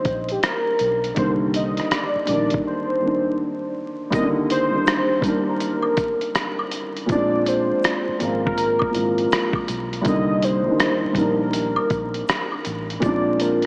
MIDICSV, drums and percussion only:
0, 0, Header, 1, 2, 480
1, 0, Start_track
1, 0, Key_signature, -3, "minor"
1, 0, Tempo, 740741
1, 758, Time_signature, 4, 2, 24, 8
1, 8853, End_track
2, 0, Start_track
2, 0, Title_t, "Drums"
2, 31, Note_on_c, 9, 42, 51
2, 34, Note_on_c, 9, 36, 89
2, 96, Note_off_c, 9, 42, 0
2, 99, Note_off_c, 9, 36, 0
2, 185, Note_on_c, 9, 42, 32
2, 250, Note_off_c, 9, 42, 0
2, 278, Note_on_c, 9, 42, 69
2, 282, Note_on_c, 9, 37, 98
2, 343, Note_off_c, 9, 42, 0
2, 347, Note_off_c, 9, 37, 0
2, 512, Note_on_c, 9, 42, 63
2, 577, Note_off_c, 9, 42, 0
2, 674, Note_on_c, 9, 42, 34
2, 739, Note_off_c, 9, 42, 0
2, 753, Note_on_c, 9, 42, 72
2, 759, Note_on_c, 9, 36, 91
2, 818, Note_off_c, 9, 42, 0
2, 824, Note_off_c, 9, 36, 0
2, 997, Note_on_c, 9, 42, 65
2, 1062, Note_off_c, 9, 42, 0
2, 1148, Note_on_c, 9, 42, 32
2, 1164, Note_on_c, 9, 37, 34
2, 1213, Note_off_c, 9, 42, 0
2, 1229, Note_off_c, 9, 37, 0
2, 1239, Note_on_c, 9, 42, 73
2, 1243, Note_on_c, 9, 37, 92
2, 1304, Note_off_c, 9, 42, 0
2, 1307, Note_off_c, 9, 37, 0
2, 1471, Note_on_c, 9, 42, 61
2, 1536, Note_off_c, 9, 42, 0
2, 1622, Note_on_c, 9, 42, 37
2, 1647, Note_on_c, 9, 36, 91
2, 1687, Note_off_c, 9, 42, 0
2, 1712, Note_off_c, 9, 36, 0
2, 2672, Note_on_c, 9, 42, 67
2, 2677, Note_on_c, 9, 36, 115
2, 2685, Note_on_c, 9, 82, 66
2, 2737, Note_off_c, 9, 42, 0
2, 2742, Note_off_c, 9, 36, 0
2, 2750, Note_off_c, 9, 82, 0
2, 2917, Note_on_c, 9, 42, 61
2, 2924, Note_on_c, 9, 82, 44
2, 2982, Note_off_c, 9, 42, 0
2, 2989, Note_off_c, 9, 82, 0
2, 3150, Note_on_c, 9, 82, 59
2, 3158, Note_on_c, 9, 42, 72
2, 3161, Note_on_c, 9, 37, 105
2, 3215, Note_off_c, 9, 82, 0
2, 3222, Note_off_c, 9, 42, 0
2, 3226, Note_off_c, 9, 37, 0
2, 3383, Note_on_c, 9, 36, 89
2, 3392, Note_on_c, 9, 42, 69
2, 3403, Note_on_c, 9, 82, 49
2, 3448, Note_off_c, 9, 36, 0
2, 3457, Note_off_c, 9, 42, 0
2, 3468, Note_off_c, 9, 82, 0
2, 3631, Note_on_c, 9, 42, 72
2, 3632, Note_on_c, 9, 82, 57
2, 3696, Note_off_c, 9, 42, 0
2, 3697, Note_off_c, 9, 82, 0
2, 3775, Note_on_c, 9, 76, 68
2, 3839, Note_off_c, 9, 76, 0
2, 3868, Note_on_c, 9, 42, 57
2, 3870, Note_on_c, 9, 82, 52
2, 3872, Note_on_c, 9, 36, 91
2, 3933, Note_off_c, 9, 42, 0
2, 3935, Note_off_c, 9, 82, 0
2, 3937, Note_off_c, 9, 36, 0
2, 4025, Note_on_c, 9, 42, 33
2, 4090, Note_off_c, 9, 42, 0
2, 4114, Note_on_c, 9, 42, 69
2, 4116, Note_on_c, 9, 82, 68
2, 4118, Note_on_c, 9, 37, 97
2, 4179, Note_off_c, 9, 42, 0
2, 4180, Note_off_c, 9, 82, 0
2, 4183, Note_off_c, 9, 37, 0
2, 4270, Note_on_c, 9, 76, 47
2, 4335, Note_off_c, 9, 76, 0
2, 4351, Note_on_c, 9, 42, 66
2, 4355, Note_on_c, 9, 82, 52
2, 4416, Note_off_c, 9, 42, 0
2, 4420, Note_off_c, 9, 82, 0
2, 4513, Note_on_c, 9, 42, 35
2, 4578, Note_off_c, 9, 42, 0
2, 4593, Note_on_c, 9, 42, 71
2, 4598, Note_on_c, 9, 36, 113
2, 4607, Note_on_c, 9, 82, 59
2, 4658, Note_off_c, 9, 42, 0
2, 4662, Note_off_c, 9, 36, 0
2, 4672, Note_off_c, 9, 82, 0
2, 4836, Note_on_c, 9, 42, 64
2, 4847, Note_on_c, 9, 82, 48
2, 4901, Note_off_c, 9, 42, 0
2, 4912, Note_off_c, 9, 82, 0
2, 5071, Note_on_c, 9, 82, 62
2, 5083, Note_on_c, 9, 42, 81
2, 5086, Note_on_c, 9, 37, 96
2, 5136, Note_off_c, 9, 82, 0
2, 5147, Note_off_c, 9, 42, 0
2, 5151, Note_off_c, 9, 37, 0
2, 5315, Note_on_c, 9, 42, 63
2, 5327, Note_on_c, 9, 82, 45
2, 5379, Note_off_c, 9, 42, 0
2, 5392, Note_off_c, 9, 82, 0
2, 5487, Note_on_c, 9, 36, 89
2, 5552, Note_off_c, 9, 36, 0
2, 5556, Note_on_c, 9, 82, 64
2, 5557, Note_on_c, 9, 42, 69
2, 5621, Note_off_c, 9, 82, 0
2, 5622, Note_off_c, 9, 42, 0
2, 5698, Note_on_c, 9, 76, 66
2, 5714, Note_on_c, 9, 36, 82
2, 5762, Note_off_c, 9, 76, 0
2, 5779, Note_off_c, 9, 36, 0
2, 5794, Note_on_c, 9, 82, 49
2, 5796, Note_on_c, 9, 42, 58
2, 5859, Note_off_c, 9, 82, 0
2, 5861, Note_off_c, 9, 42, 0
2, 5949, Note_on_c, 9, 42, 34
2, 6014, Note_off_c, 9, 42, 0
2, 6033, Note_on_c, 9, 82, 59
2, 6041, Note_on_c, 9, 42, 69
2, 6046, Note_on_c, 9, 37, 117
2, 6098, Note_off_c, 9, 82, 0
2, 6106, Note_off_c, 9, 42, 0
2, 6111, Note_off_c, 9, 37, 0
2, 6178, Note_on_c, 9, 36, 88
2, 6190, Note_on_c, 9, 76, 47
2, 6242, Note_off_c, 9, 36, 0
2, 6255, Note_off_c, 9, 76, 0
2, 6274, Note_on_c, 9, 42, 68
2, 6278, Note_on_c, 9, 82, 52
2, 6339, Note_off_c, 9, 42, 0
2, 6343, Note_off_c, 9, 82, 0
2, 6435, Note_on_c, 9, 42, 37
2, 6499, Note_off_c, 9, 42, 0
2, 6511, Note_on_c, 9, 42, 74
2, 6517, Note_on_c, 9, 36, 108
2, 6526, Note_on_c, 9, 82, 71
2, 6575, Note_off_c, 9, 42, 0
2, 6582, Note_off_c, 9, 36, 0
2, 6591, Note_off_c, 9, 82, 0
2, 6755, Note_on_c, 9, 42, 60
2, 6770, Note_on_c, 9, 82, 43
2, 6820, Note_off_c, 9, 42, 0
2, 6835, Note_off_c, 9, 82, 0
2, 6995, Note_on_c, 9, 82, 60
2, 6996, Note_on_c, 9, 42, 80
2, 7000, Note_on_c, 9, 37, 98
2, 7060, Note_off_c, 9, 82, 0
2, 7061, Note_off_c, 9, 42, 0
2, 7065, Note_off_c, 9, 37, 0
2, 7224, Note_on_c, 9, 36, 78
2, 7229, Note_on_c, 9, 42, 63
2, 7251, Note_on_c, 9, 82, 44
2, 7289, Note_off_c, 9, 36, 0
2, 7293, Note_off_c, 9, 42, 0
2, 7315, Note_off_c, 9, 82, 0
2, 7474, Note_on_c, 9, 42, 85
2, 7478, Note_on_c, 9, 82, 64
2, 7539, Note_off_c, 9, 42, 0
2, 7543, Note_off_c, 9, 82, 0
2, 7622, Note_on_c, 9, 76, 73
2, 7687, Note_off_c, 9, 76, 0
2, 7712, Note_on_c, 9, 42, 51
2, 7715, Note_on_c, 9, 36, 90
2, 7720, Note_on_c, 9, 82, 53
2, 7777, Note_off_c, 9, 42, 0
2, 7780, Note_off_c, 9, 36, 0
2, 7785, Note_off_c, 9, 82, 0
2, 7868, Note_on_c, 9, 42, 37
2, 7933, Note_off_c, 9, 42, 0
2, 7956, Note_on_c, 9, 82, 73
2, 7963, Note_on_c, 9, 42, 70
2, 7967, Note_on_c, 9, 37, 112
2, 8021, Note_off_c, 9, 82, 0
2, 8028, Note_off_c, 9, 42, 0
2, 8032, Note_off_c, 9, 37, 0
2, 8110, Note_on_c, 9, 76, 46
2, 8175, Note_off_c, 9, 76, 0
2, 8195, Note_on_c, 9, 42, 68
2, 8200, Note_on_c, 9, 82, 51
2, 8260, Note_off_c, 9, 42, 0
2, 8265, Note_off_c, 9, 82, 0
2, 8360, Note_on_c, 9, 42, 37
2, 8425, Note_off_c, 9, 42, 0
2, 8436, Note_on_c, 9, 42, 71
2, 8441, Note_on_c, 9, 36, 108
2, 8448, Note_on_c, 9, 82, 68
2, 8501, Note_off_c, 9, 42, 0
2, 8506, Note_off_c, 9, 36, 0
2, 8513, Note_off_c, 9, 82, 0
2, 8681, Note_on_c, 9, 42, 66
2, 8695, Note_on_c, 9, 82, 47
2, 8746, Note_off_c, 9, 42, 0
2, 8760, Note_off_c, 9, 82, 0
2, 8828, Note_on_c, 9, 42, 34
2, 8853, Note_off_c, 9, 42, 0
2, 8853, End_track
0, 0, End_of_file